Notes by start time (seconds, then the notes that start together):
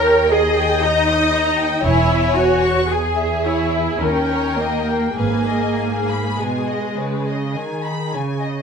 Already playing: D#2 A#4 C#5
0.04 G5
0.29 G#4 D#5
0.56 G5
0.82 D#4 A#5
1.09 D#6
1.35 A#5
1.59 G5
1.83 E1 E2 E4 C#5 G#5
2.10 E5
2.36 F#4 G#5
2.62 C#6
2.88 G#4 G#5
3.16 E5
3.44 E4 C#5
3.73 E5
4.00 D#2 C#4 A#4 G5
4.30 C#5
4.56 A#3 D#5
4.87 G5
5.16 G#1 G#2 A#3 G#4 B4 G#5
5.47 D#5
5.78 G#5
6.08 B5
6.37 B2 G#3 G#5
6.68 D#5
6.96 C#3 B4
7.27 D#5
7.54 D#3 G#5
7.84 B5
8.13 C#3 G#5
8.42 D#5